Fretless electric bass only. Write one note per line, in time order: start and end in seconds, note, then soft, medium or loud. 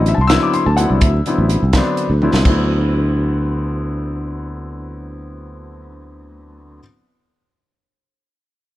0.00 0.12 A1 medium
0.18 0.36 C2 medium
0.66 0.84 D2 medium
0.90 0.99 C2 medium
1.02 1.20 D2 medium
1.38 1.56 A1 medium
1.63 1.80 C2 medium
2.10 2.28 D2 medium
2.33 2.42 C2 medium
2.45 6.79 D2 medium